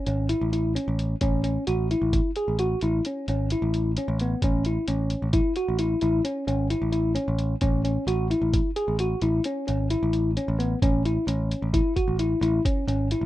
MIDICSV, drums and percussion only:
0, 0, Header, 1, 2, 480
1, 0, Start_track
1, 0, Key_signature, 3, "major"
1, 0, Tempo, 457317
1, 1277, Time_signature, 7, 2, 24, 8
1, 13915, End_track
2, 0, Start_track
2, 0, Title_t, "Drums"
2, 68, Note_on_c, 9, 42, 52
2, 173, Note_off_c, 9, 42, 0
2, 307, Note_on_c, 9, 42, 70
2, 412, Note_off_c, 9, 42, 0
2, 556, Note_on_c, 9, 42, 50
2, 661, Note_off_c, 9, 42, 0
2, 801, Note_on_c, 9, 42, 69
2, 906, Note_off_c, 9, 42, 0
2, 1039, Note_on_c, 9, 42, 49
2, 1144, Note_off_c, 9, 42, 0
2, 1269, Note_on_c, 9, 42, 68
2, 1273, Note_on_c, 9, 36, 91
2, 1374, Note_off_c, 9, 42, 0
2, 1378, Note_off_c, 9, 36, 0
2, 1511, Note_on_c, 9, 42, 53
2, 1616, Note_off_c, 9, 42, 0
2, 1753, Note_on_c, 9, 42, 65
2, 1858, Note_off_c, 9, 42, 0
2, 2004, Note_on_c, 9, 42, 48
2, 2109, Note_off_c, 9, 42, 0
2, 2237, Note_on_c, 9, 36, 87
2, 2237, Note_on_c, 9, 42, 69
2, 2342, Note_off_c, 9, 36, 0
2, 2342, Note_off_c, 9, 42, 0
2, 2473, Note_on_c, 9, 42, 48
2, 2578, Note_off_c, 9, 42, 0
2, 2715, Note_on_c, 9, 42, 65
2, 2820, Note_off_c, 9, 42, 0
2, 2953, Note_on_c, 9, 42, 50
2, 3058, Note_off_c, 9, 42, 0
2, 3199, Note_on_c, 9, 42, 67
2, 3304, Note_off_c, 9, 42, 0
2, 3442, Note_on_c, 9, 42, 49
2, 3547, Note_off_c, 9, 42, 0
2, 3678, Note_on_c, 9, 42, 68
2, 3783, Note_off_c, 9, 42, 0
2, 3924, Note_on_c, 9, 42, 50
2, 4029, Note_off_c, 9, 42, 0
2, 4163, Note_on_c, 9, 42, 69
2, 4267, Note_off_c, 9, 42, 0
2, 4403, Note_on_c, 9, 42, 50
2, 4508, Note_off_c, 9, 42, 0
2, 4641, Note_on_c, 9, 36, 89
2, 4641, Note_on_c, 9, 42, 71
2, 4746, Note_off_c, 9, 36, 0
2, 4746, Note_off_c, 9, 42, 0
2, 4877, Note_on_c, 9, 42, 53
2, 4982, Note_off_c, 9, 42, 0
2, 5118, Note_on_c, 9, 42, 73
2, 5223, Note_off_c, 9, 42, 0
2, 5354, Note_on_c, 9, 42, 54
2, 5459, Note_off_c, 9, 42, 0
2, 5595, Note_on_c, 9, 42, 68
2, 5599, Note_on_c, 9, 36, 89
2, 5700, Note_off_c, 9, 42, 0
2, 5704, Note_off_c, 9, 36, 0
2, 5832, Note_on_c, 9, 42, 51
2, 5937, Note_off_c, 9, 42, 0
2, 6073, Note_on_c, 9, 42, 65
2, 6178, Note_off_c, 9, 42, 0
2, 6311, Note_on_c, 9, 42, 51
2, 6416, Note_off_c, 9, 42, 0
2, 6557, Note_on_c, 9, 42, 68
2, 6662, Note_off_c, 9, 42, 0
2, 6801, Note_on_c, 9, 42, 50
2, 6906, Note_off_c, 9, 42, 0
2, 7036, Note_on_c, 9, 42, 62
2, 7141, Note_off_c, 9, 42, 0
2, 7269, Note_on_c, 9, 42, 49
2, 7374, Note_off_c, 9, 42, 0
2, 7510, Note_on_c, 9, 42, 63
2, 7615, Note_off_c, 9, 42, 0
2, 7752, Note_on_c, 9, 42, 47
2, 7857, Note_off_c, 9, 42, 0
2, 7988, Note_on_c, 9, 42, 66
2, 7994, Note_on_c, 9, 36, 92
2, 8093, Note_off_c, 9, 42, 0
2, 8099, Note_off_c, 9, 36, 0
2, 8237, Note_on_c, 9, 42, 49
2, 8342, Note_off_c, 9, 42, 0
2, 8478, Note_on_c, 9, 42, 76
2, 8583, Note_off_c, 9, 42, 0
2, 8723, Note_on_c, 9, 42, 51
2, 8828, Note_off_c, 9, 42, 0
2, 8959, Note_on_c, 9, 36, 88
2, 8959, Note_on_c, 9, 42, 75
2, 9064, Note_off_c, 9, 36, 0
2, 9064, Note_off_c, 9, 42, 0
2, 9197, Note_on_c, 9, 42, 55
2, 9302, Note_off_c, 9, 42, 0
2, 9435, Note_on_c, 9, 42, 69
2, 9540, Note_off_c, 9, 42, 0
2, 9672, Note_on_c, 9, 42, 51
2, 9777, Note_off_c, 9, 42, 0
2, 9911, Note_on_c, 9, 42, 71
2, 10016, Note_off_c, 9, 42, 0
2, 10159, Note_on_c, 9, 42, 52
2, 10264, Note_off_c, 9, 42, 0
2, 10395, Note_on_c, 9, 42, 68
2, 10500, Note_off_c, 9, 42, 0
2, 10635, Note_on_c, 9, 42, 48
2, 10740, Note_off_c, 9, 42, 0
2, 10882, Note_on_c, 9, 42, 62
2, 10987, Note_off_c, 9, 42, 0
2, 11126, Note_on_c, 9, 42, 46
2, 11231, Note_off_c, 9, 42, 0
2, 11360, Note_on_c, 9, 36, 94
2, 11361, Note_on_c, 9, 42, 66
2, 11465, Note_off_c, 9, 36, 0
2, 11466, Note_off_c, 9, 42, 0
2, 11603, Note_on_c, 9, 42, 50
2, 11708, Note_off_c, 9, 42, 0
2, 11839, Note_on_c, 9, 42, 70
2, 11944, Note_off_c, 9, 42, 0
2, 12085, Note_on_c, 9, 42, 52
2, 12190, Note_off_c, 9, 42, 0
2, 12320, Note_on_c, 9, 36, 88
2, 12321, Note_on_c, 9, 42, 69
2, 12425, Note_off_c, 9, 36, 0
2, 12426, Note_off_c, 9, 42, 0
2, 12559, Note_on_c, 9, 36, 64
2, 12559, Note_on_c, 9, 42, 50
2, 12664, Note_off_c, 9, 36, 0
2, 12664, Note_off_c, 9, 42, 0
2, 12797, Note_on_c, 9, 42, 65
2, 12902, Note_off_c, 9, 42, 0
2, 13042, Note_on_c, 9, 42, 52
2, 13147, Note_off_c, 9, 42, 0
2, 13280, Note_on_c, 9, 36, 91
2, 13284, Note_on_c, 9, 42, 78
2, 13385, Note_off_c, 9, 36, 0
2, 13388, Note_off_c, 9, 42, 0
2, 13523, Note_on_c, 9, 42, 52
2, 13627, Note_off_c, 9, 42, 0
2, 13760, Note_on_c, 9, 42, 68
2, 13865, Note_off_c, 9, 42, 0
2, 13915, End_track
0, 0, End_of_file